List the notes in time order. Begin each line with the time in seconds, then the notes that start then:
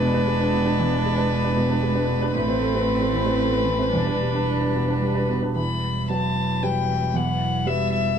Already playing: E1 G#3 D4 B4
0.01 B2
0.14 D4 B4
0.27 G#3
0.40 D4 B4
0.52 B2
0.65 D4 B4
0.79 E2
0.92 D4 B4
1.05 G#3
1.18 D4 B4
1.44 D4 B4
1.56 B2
1.70 D4 B4
1.83 G#3
1.95 D4 B4
2.08 B2
2.22 D4 B4
2.35 A1 A2 A3 C4 B4
2.48 C4 B4
2.60 A3
2.74 C4 B4
3.01 C4 B4
3.13 E3
3.26 C4 B4
3.40 A3
3.52 C4 B4
3.66 E3
3.79 C4 B4
3.93 E1 E2 G3 D4
4.06 D4 B4
4.20 G3
4.34 D4 B4
4.61 D4 B4
4.75 B2
4.88 D4 B4
5.02 G3
5.15 D4 B4
5.29 B2
5.42 D4 B4
5.56 E1 E2 E3 G3 E4 B4 B5
6.09 F#3 F#4 B4 A5
6.61 E3 F#3 G3 B4 G5
6.89 E3
7.12 E2 F#3 F#5
7.66 G3 F#4 B4 E5
7.93 E5